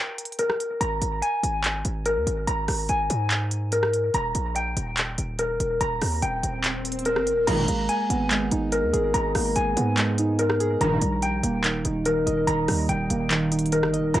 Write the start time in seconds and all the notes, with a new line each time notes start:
Already playing: A#4 G5 A#5
0.18 closed hi-hat
0.25 closed hi-hat
0.32 closed hi-hat
0.39 A#4, closed hi-hat
0.50 cross-stick
0.60 closed hi-hat
0.81 G#1 A#5, closed hi-hat
1.02 G#1, closed hi-hat
1.22 G#5, closed hi-hat
1.43 G#1, closed hi-hat
1.64 clap, closed hi-hat
1.85 G#1, closed hi-hat
2.05 A#4, closed hi-hat
2.16 D#2
2.27 G#1, closed hi-hat
2.47 G#1 A#5, closed hi-hat
2.68 G#1, cross-stick, open hi-hat
2.89 G#1 G#5, closed hi-hat
3.10 G#2, closed hi-hat
3.31 clap, closed hi-hat
3.51 closed hi-hat
3.72 A#4, closed hi-hat
3.83 cross-stick
3.93 closed hi-hat
4.14 D#1 A#5, closed hi-hat
4.35 A#1, closed hi-hat
4.56 G5, closed hi-hat
4.77 D#1, closed hi-hat
4.97 clap, closed hi-hat
5.18 D#1, closed hi-hat
5.39 A#4, closed hi-hat
5.60 D#1, closed hi-hat
5.81 D#1 A#5, closed hi-hat, swell
6.02 D#2, cross-stick, open hi-hat
6.22 D#1 G5, closed hi-hat
6.43 D#1, closed hi-hat
6.64 clap, closed hi-hat
6.85 closed hi-hat
6.92 closed hi-hat
6.99 closed hi-hat
7.05 A#4, closed hi-hat
7.16 G1, cross-stick
7.27 closed hi-hat
7.32 D#1
7.47 G#1 B1 A#2 D#3 G#3 A#5, closed hi-hat, crash
7.68 G#1 A#3, closed hi-hat
7.89 G#5, closed hi-hat
8.10 G#1 B3, closed hi-hat
8.31 G#3, clap, closed hi-hat
8.51 G#1 D#4, closed hi-hat
8.72 G#3 A#4, closed hi-hat
8.83 D#2
8.93 G#1 G#4, closed hi-hat
9.14 G#1 G#3 A#5, closed hi-hat
9.35 G#1 A#3, cross-stick, open hi-hat
9.56 G#1 G#5, closed hi-hat
9.77 G#2 B3, closed hi-hat
9.97 G#3, clap, closed hi-hat
10.18 D#4, closed hi-hat
10.39 G#3 A#4, closed hi-hat
10.50 cross-stick
10.60 G#4, closed hi-hat
10.81 D#1 A#1 G2 D#3 A#5, closed hi-hat
11.01 A#1 G3, closed hi-hat
11.22 G5, closed hi-hat
11.43 D#1 A#3, closed hi-hat
11.64 D#3, clap, closed hi-hat
11.85 D#1 D#4, closed hi-hat
12.05 D#3 A#4, closed hi-hat
12.26 D#1 D#5, closed hi-hat
12.47 D#1 D#3 A#5, closed hi-hat
12.68 D#2 G3, cross-stick, open hi-hat
12.89 D#1 G5, closed hi-hat
13.10 D#1 A#3, closed hi-hat
13.30 D#3, clap, closed hi-hat
13.52 D#4, closed hi-hat
13.59 closed hi-hat
13.66 closed hi-hat
13.72 D#3 A#4, closed hi-hat
13.83 G1, cross-stick
13.93 D#5, closed hi-hat
13.99 D#1
14.14 G#1 B1 A#2 D#3 G#3 A#5, closed hi-hat